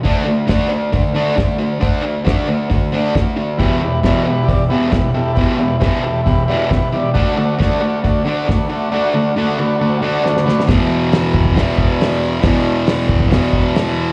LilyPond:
<<
  \new Staff \with { instrumentName = "Transistor combo organ" } { \time 4/4 \key e \minor \tempo 4 = 136 r1 | r1 | <e' g' b'>8 <e' g' b'>8 <e' g' b'>8 <e' g' b'>8 <e' g' d''>8 <e' g' b'>8 <e' g' b'>8 <e' g' a'>8 | <e' g' b'>8 <e' g' b'>8 <e' g' b'>8 <e' g' a'>8 <e' g' b'>8 <e' g' b'>8 <e' g' b'>8 <e' g' d''>8 |
<d' fis' a'>8 <d' fis' a'>8 <d' fis' a'>8 <d' fis' a'>8 <d' fis' a'>8 <d' fis' a'>8 <d' fis' a'>8 <d' fis' a'>8 | <d' fis' a'>8 <d' fis' a'>8 <d' fis' a'>8 <d' fis' b'>8 <d' fis' a'>8 <d' fis' a'>8 <d' fis' a'>8 <d' fis' b'>8 | r1 | r1 | }
  \new Staff \with { instrumentName = "Distorted electric guitar" } { \clef bass \time 4/4 \key e \minor <d a d'>8 <d a>8 <d a d'>8 <d a>8 <d a>8 <d a d'>8 <d a>8 <d a>8 | <d a d'>8 <d a>8 <d a d'>8 <d a>8 <d a>8 <d a d'>8 <d a>8 <d a>8 | <e, b, e>8 <e, b,>8 <e, b, e>8 <e, b,>8 <e, b,>8 <e, b, e>8 <e, b,>8 <e, b,>8 | <e, b, e>8 <e, b,>8 <e, b, e>8 <e, b,>8 <e, b,>8 <e, b, e>8 <e, b,>8 <e, b,>8 |
<d a d'>8 <d a>8 <d a d'>8 <d a>8 <d a>8 <d a d'>8 <d a>8 <d a>8 | <d a d'>8 <d a>8 <d a d'>8 <d a>8 <d a>8 <d a d'>8 <d a>8 <d a>8 | <e, b, e>2 <e, b, e>2 | <e, b, e>2 <e, b, e>2 | }
  \new DrumStaff \with { instrumentName = "Drums" } \drummode { \time 4/4 <hho bd>4 <hho bd sn>4 <hho bd>4 <hho bd sn>4 | <hho bd>4 <hho bd sn>4 <hho bd>4 <hho bd sn>4 | <hho bd>4 <hho bd sn>4 <hho bd>4 <hho bd sn>4 | <hho bd>4 <hho bd sn>4 <hho bd>4 <hho bd sn>4 |
<hho bd>4 <hho bd sn>4 <hho bd>4 <hho bd sn>4 | r4 r4 r4 sn16 sn16 sn16 sn16 | <hho bd sn>4 <hho sn>8 bd16 bd16 <hho bd sn>8 bd8 <hho sn>4 | <hho bd sn>4 <hho sn>8 bd16 bd16 <hho bd sn>8 bd8 <hho sn>4 | }
>>